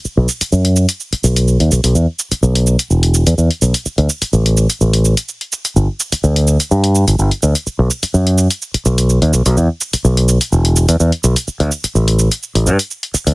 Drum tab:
HH |---x-x-x-x-x-x-x|---x-x-x-x-x-x-x|-x-x-x-x-x-x-x-x|---x-x-x-x-x-x-x|
SH |x-xxx-xxx-xxx-xx|x-xxx-xxx-xxx-xx|x-xxx-xxx-xxx-xx|x-xxx-xxx-xxx-xx|

HH |---x-x-x-x-x-x-x|---x-x-x-x-x-x-x|-x-x-x-x-x-x-x-x|
SH |x-xxx-xxx-xxx-xx|x-xxx-xxx-xxx-xx|x-xxx-xxx-xxx-xx|